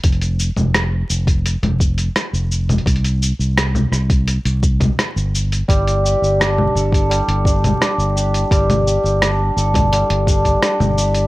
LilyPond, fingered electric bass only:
\new Staff \with { instrumentName = "Fingered electric bass" } { \clef bass \time 4/4 \key c \mixolydian \tempo 4 = 85 f,,8. f,,8. f,,8. f,,8. r16 f,,8. | c,8. c,8. c,8. c,8. r16 g,,8. | g,,8. g,,8. g,,8. g,,8. r16 g,,8. | g,,8. g,,8. g,,8. g,,8. r16 g,,8. | }